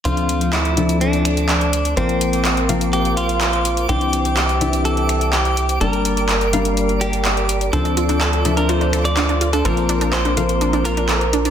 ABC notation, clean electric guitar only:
X:1
M:4/4
L:1/16
Q:1/4=125
K:Dm
V:1 name="Clean electric guitar"
F4 E4 D4 D4 | C8 G2 F6 | G4 G4 A4 G4 | B8- B2 G6 |
A4 A3 B c3 d4 A | B4 c6 B6 |]